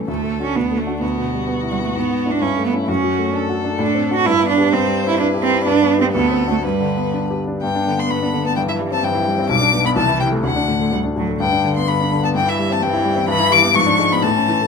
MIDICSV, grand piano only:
0, 0, Header, 1, 2, 480
1, 0, Start_track
1, 0, Key_signature, 2, "major"
1, 0, Tempo, 465116
1, 83, Time_signature, 2, 2, 24, 8
1, 3924, Key_signature, 1, "major"
1, 5840, Tempo, 488599
1, 8240, Tempo, 464037
1, 10160, Tempo, 480384
1, 12080, Tempo, 466926
1, 14000, Tempo, 494234
1, 14896, End_track
2, 0, Start_track
2, 0, Title_t, "Grand piano"
2, 0, Program_c, 0, 0
2, 0, Control_c, 0, 64, 127
2, 0, Note_on_c, 0, 45, 29
2, 0, Note_on_c, 0, 52, 25
2, 0, Note_on_c, 0, 57, 26
2, 0, Note_on_c, 0, 61, 27
2, 80, Note_on_c, 0, 38, 40
2, 103, Control_c, 0, 64, 0
2, 107, Note_off_c, 0, 61, 0
2, 109, Note_off_c, 0, 57, 0
2, 112, Note_off_c, 0, 52, 0
2, 114, Note_off_c, 0, 45, 0
2, 244, Note_on_c, 0, 57, 31
2, 272, Control_c, 0, 64, 127
2, 408, Note_on_c, 0, 62, 28
2, 413, Note_on_c, 0, 66, 32
2, 507, Note_off_c, 0, 57, 0
2, 555, Note_off_c, 0, 62, 0
2, 556, Note_off_c, 0, 38, 0
2, 558, Note_off_c, 0, 66, 0
2, 575, Note_on_c, 0, 38, 40
2, 593, Control_c, 0, 64, 0
2, 733, Note_on_c, 0, 57, 32
2, 751, Control_c, 0, 64, 127
2, 896, Note_on_c, 0, 62, 32
2, 897, Note_on_c, 0, 66, 34
2, 989, Note_off_c, 0, 57, 0
2, 1036, Note_off_c, 0, 38, 0
2, 1038, Note_off_c, 0, 62, 0
2, 1039, Note_off_c, 0, 66, 0
2, 1052, Note_on_c, 0, 38, 42
2, 1073, Control_c, 0, 64, 0
2, 1210, Note_on_c, 0, 47, 32
2, 1224, Control_c, 0, 64, 127
2, 1376, Note_on_c, 0, 55, 30
2, 1466, Note_off_c, 0, 47, 0
2, 1523, Note_on_c, 0, 59, 33
2, 1630, Note_off_c, 0, 55, 0
2, 1682, Note_on_c, 0, 64, 35
2, 1785, Note_off_c, 0, 59, 0
2, 1845, Note_on_c, 0, 59, 33
2, 1945, Note_off_c, 0, 64, 0
2, 1985, Note_off_c, 0, 38, 0
2, 2005, Note_on_c, 0, 44, 44
2, 2010, Note_off_c, 0, 59, 0
2, 2035, Control_c, 0, 64, 0
2, 2170, Note_on_c, 0, 59, 35
2, 2193, Control_c, 0, 64, 127
2, 2329, Note_on_c, 0, 62, 32
2, 2337, Note_on_c, 0, 64, 34
2, 2432, Note_off_c, 0, 59, 0
2, 2478, Note_off_c, 0, 62, 0
2, 2480, Note_off_c, 0, 44, 0
2, 2483, Note_off_c, 0, 64, 0
2, 2491, Note_on_c, 0, 43, 43
2, 2518, Control_c, 0, 64, 0
2, 2656, Note_on_c, 0, 57, 35
2, 2690, Control_c, 0, 64, 127
2, 2811, Note_on_c, 0, 61, 34
2, 2818, Note_on_c, 0, 64, 36
2, 2911, Note_off_c, 0, 57, 0
2, 2957, Note_off_c, 0, 61, 0
2, 2958, Note_off_c, 0, 43, 0
2, 2960, Note_off_c, 0, 64, 0
2, 2971, Note_on_c, 0, 42, 47
2, 2998, Control_c, 0, 64, 0
2, 3128, Note_on_c, 0, 54, 37
2, 3183, Control_c, 0, 64, 127
2, 3285, Note_on_c, 0, 57, 38
2, 3383, Note_off_c, 0, 54, 0
2, 3439, Note_on_c, 0, 62, 39
2, 3541, Note_off_c, 0, 57, 0
2, 3603, Note_on_c, 0, 66, 40
2, 3697, Note_off_c, 0, 62, 0
2, 3758, Note_on_c, 0, 62, 41
2, 3858, Note_off_c, 0, 66, 0
2, 3892, Note_off_c, 0, 42, 0
2, 3911, Note_on_c, 0, 45, 51
2, 3920, Note_off_c, 0, 62, 0
2, 3945, Control_c, 0, 64, 0
2, 4073, Note_on_c, 0, 60, 43
2, 4099, Control_c, 0, 64, 127
2, 4236, Note_on_c, 0, 62, 39
2, 4241, Note_on_c, 0, 66, 43
2, 4333, Note_off_c, 0, 60, 0
2, 4380, Note_off_c, 0, 45, 0
2, 4382, Note_off_c, 0, 62, 0
2, 4384, Note_off_c, 0, 66, 0
2, 4397, Note_on_c, 0, 43, 53
2, 4422, Control_c, 0, 64, 0
2, 4552, Note_on_c, 0, 59, 44
2, 4573, Control_c, 0, 64, 127
2, 4719, Note_on_c, 0, 62, 39
2, 4724, Note_on_c, 0, 67, 45
2, 4811, Note_off_c, 0, 59, 0
2, 4859, Note_off_c, 0, 43, 0
2, 4863, Note_off_c, 0, 62, 0
2, 4865, Note_off_c, 0, 67, 0
2, 4874, Note_on_c, 0, 43, 59
2, 4900, Control_c, 0, 64, 0
2, 5034, Note_on_c, 0, 55, 48
2, 5085, Control_c, 0, 64, 127
2, 5198, Note_on_c, 0, 60, 44
2, 5292, Note_off_c, 0, 55, 0
2, 5361, Note_on_c, 0, 64, 49
2, 5454, Note_off_c, 0, 60, 0
2, 5513, Note_on_c, 0, 67, 49
2, 5616, Note_off_c, 0, 64, 0
2, 5683, Note_on_c, 0, 64, 46
2, 5773, Note_off_c, 0, 67, 0
2, 5810, Note_off_c, 0, 43, 0
2, 5843, Note_off_c, 0, 64, 0
2, 5844, Note_on_c, 0, 43, 59
2, 5860, Control_c, 0, 64, 0
2, 6004, Note_on_c, 0, 59, 45
2, 6031, Control_c, 0, 64, 127
2, 6158, Note_on_c, 0, 62, 43
2, 6164, Note_on_c, 0, 67, 45
2, 6252, Note_off_c, 0, 59, 0
2, 6298, Note_off_c, 0, 62, 0
2, 6299, Note_off_c, 0, 43, 0
2, 6301, Note_off_c, 0, 67, 0
2, 6319, Note_on_c, 0, 38, 54
2, 6330, Control_c, 0, 64, 0
2, 6479, Note_on_c, 0, 60, 41
2, 6482, Control_c, 0, 64, 127
2, 6643, Note_on_c, 0, 62, 38
2, 6644, Note_on_c, 0, 66, 42
2, 6731, Note_off_c, 0, 60, 0
2, 6781, Note_off_c, 0, 38, 0
2, 6783, Note_off_c, 0, 62, 0
2, 6783, Note_off_c, 0, 66, 0
2, 6800, Note_on_c, 0, 43, 51
2, 6812, Control_c, 0, 64, 0
2, 6963, Note_on_c, 0, 50, 42
2, 6978, Control_c, 0, 64, 127
2, 7122, Note_on_c, 0, 59, 38
2, 7221, Note_off_c, 0, 50, 0
2, 7285, Note_on_c, 0, 62, 38
2, 7383, Note_off_c, 0, 59, 0
2, 7458, Note_on_c, 0, 67, 40
2, 7547, Note_off_c, 0, 62, 0
2, 7621, Note_on_c, 0, 62, 39
2, 7713, Note_off_c, 0, 67, 0
2, 7745, Note_off_c, 0, 43, 0
2, 7775, Note_off_c, 0, 62, 0
2, 7779, Note_on_c, 0, 43, 51
2, 7789, Control_c, 0, 64, 0
2, 7895, Note_on_c, 0, 62, 41
2, 7985, Control_c, 0, 64, 127
2, 8011, Note_on_c, 0, 50, 36
2, 8080, Note_off_c, 0, 62, 0
2, 8123, Note_on_c, 0, 59, 36
2, 8196, Note_off_c, 0, 50, 0
2, 8232, Note_off_c, 0, 43, 0
2, 8247, Note_on_c, 0, 43, 45
2, 8314, Note_off_c, 0, 59, 0
2, 8367, Note_on_c, 0, 62, 41
2, 8483, Note_on_c, 0, 50, 40
2, 8558, Note_off_c, 0, 62, 0
2, 8602, Note_on_c, 0, 59, 43
2, 8676, Note_off_c, 0, 50, 0
2, 8710, Note_off_c, 0, 43, 0
2, 8723, Note_off_c, 0, 59, 0
2, 8725, Note_on_c, 0, 43, 52
2, 8742, Control_c, 0, 64, 0
2, 8841, Note_on_c, 0, 64, 44
2, 8893, Control_c, 0, 64, 127
2, 8957, Note_on_c, 0, 55, 42
2, 9034, Note_off_c, 0, 64, 0
2, 9084, Note_on_c, 0, 60, 43
2, 9152, Note_off_c, 0, 55, 0
2, 9183, Note_off_c, 0, 43, 0
2, 9199, Note_on_c, 0, 43, 48
2, 9274, Note_off_c, 0, 60, 0
2, 9321, Note_on_c, 0, 64, 47
2, 9444, Note_on_c, 0, 55, 47
2, 9511, Note_off_c, 0, 64, 0
2, 9560, Note_on_c, 0, 60, 50
2, 9632, Note_off_c, 0, 55, 0
2, 9662, Note_off_c, 0, 43, 0
2, 9676, Note_on_c, 0, 35, 64
2, 9679, Note_off_c, 0, 60, 0
2, 9699, Control_c, 0, 64, 0
2, 9797, Note_on_c, 0, 62, 53
2, 9843, Control_c, 0, 64, 127
2, 9925, Note_on_c, 0, 47, 48
2, 9990, Note_off_c, 0, 62, 0
2, 10044, Note_on_c, 0, 59, 51
2, 10116, Note_off_c, 0, 47, 0
2, 10146, Note_off_c, 0, 35, 0
2, 10160, Note_on_c, 0, 36, 63
2, 10163, Note_off_c, 0, 59, 0
2, 10181, Control_c, 0, 64, 0
2, 10278, Note_on_c, 0, 64, 52
2, 10324, Control_c, 0, 64, 127
2, 10403, Note_on_c, 0, 48, 47
2, 10471, Note_off_c, 0, 64, 0
2, 10515, Note_on_c, 0, 57, 44
2, 10595, Note_off_c, 0, 48, 0
2, 10626, Note_off_c, 0, 36, 0
2, 10636, Note_on_c, 0, 38, 55
2, 10639, Note_off_c, 0, 57, 0
2, 10662, Control_c, 0, 64, 0
2, 10764, Note_on_c, 0, 62, 44
2, 10850, Control_c, 0, 64, 127
2, 10882, Note_on_c, 0, 45, 40
2, 10958, Note_off_c, 0, 62, 0
2, 11002, Note_on_c, 0, 57, 37
2, 11076, Note_off_c, 0, 45, 0
2, 11100, Note_off_c, 0, 38, 0
2, 11115, Note_on_c, 0, 38, 43
2, 11196, Note_off_c, 0, 57, 0
2, 11238, Note_on_c, 0, 62, 41
2, 11364, Note_on_c, 0, 45, 39
2, 11435, Note_off_c, 0, 62, 0
2, 11487, Note_on_c, 0, 57, 42
2, 11558, Note_off_c, 0, 45, 0
2, 11586, Note_off_c, 0, 38, 0
2, 11600, Note_on_c, 0, 43, 56
2, 11607, Note_off_c, 0, 57, 0
2, 11624, Control_c, 0, 64, 0
2, 11720, Note_on_c, 0, 62, 43
2, 11808, Control_c, 0, 64, 127
2, 11846, Note_on_c, 0, 50, 43
2, 11912, Note_off_c, 0, 62, 0
2, 11962, Note_on_c, 0, 59, 39
2, 12034, Note_off_c, 0, 50, 0
2, 12065, Note_off_c, 0, 43, 0
2, 12080, Note_on_c, 0, 43, 45
2, 12152, Note_off_c, 0, 59, 0
2, 12204, Note_on_c, 0, 62, 42
2, 12321, Note_on_c, 0, 50, 42
2, 12395, Note_off_c, 0, 62, 0
2, 12445, Note_on_c, 0, 59, 43
2, 12514, Note_off_c, 0, 50, 0
2, 12545, Note_off_c, 0, 43, 0
2, 12560, Note_on_c, 0, 43, 58
2, 12564, Note_off_c, 0, 59, 0
2, 12583, Control_c, 0, 64, 0
2, 12685, Note_on_c, 0, 64, 47
2, 12739, Control_c, 0, 64, 127
2, 12809, Note_on_c, 0, 55, 45
2, 12875, Note_off_c, 0, 64, 0
2, 12925, Note_on_c, 0, 60, 45
2, 12996, Note_off_c, 0, 55, 0
2, 13030, Note_off_c, 0, 43, 0
2, 13045, Note_on_c, 0, 43, 51
2, 13113, Note_off_c, 0, 60, 0
2, 13164, Note_on_c, 0, 64, 49
2, 13283, Note_on_c, 0, 55, 49
2, 13351, Note_off_c, 0, 64, 0
2, 13394, Note_on_c, 0, 60, 51
2, 13471, Note_off_c, 0, 55, 0
2, 13502, Note_off_c, 0, 43, 0
2, 13515, Note_off_c, 0, 60, 0
2, 13518, Note_on_c, 0, 43, 64
2, 13533, Control_c, 0, 64, 0
2, 13635, Note_on_c, 0, 64, 54
2, 13679, Control_c, 0, 64, 127
2, 13753, Note_on_c, 0, 55, 49
2, 13829, Note_off_c, 0, 64, 0
2, 13872, Note_on_c, 0, 59, 48
2, 13949, Note_off_c, 0, 55, 0
2, 13986, Note_off_c, 0, 43, 0
2, 13997, Note_off_c, 0, 59, 0
2, 13997, Note_on_c, 0, 44, 64
2, 14020, Control_c, 0, 64, 0
2, 14114, Note_on_c, 0, 62, 54
2, 14192, Control_c, 0, 64, 127
2, 14236, Note_on_c, 0, 56, 47
2, 14305, Note_off_c, 0, 62, 0
2, 14354, Note_on_c, 0, 59, 48
2, 14427, Note_off_c, 0, 56, 0
2, 14459, Note_off_c, 0, 44, 0
2, 14465, Note_on_c, 0, 45, 56
2, 14475, Note_off_c, 0, 59, 0
2, 14497, Control_c, 0, 64, 0
2, 14591, Note_on_c, 0, 61, 46
2, 14675, Control_c, 0, 64, 127
2, 14714, Note_on_c, 0, 52, 41
2, 14788, Note_off_c, 0, 61, 0
2, 14839, Note_on_c, 0, 57, 40
2, 14896, Note_off_c, 0, 45, 0
2, 14896, Note_off_c, 0, 52, 0
2, 14896, Note_off_c, 0, 57, 0
2, 14896, End_track
0, 0, End_of_file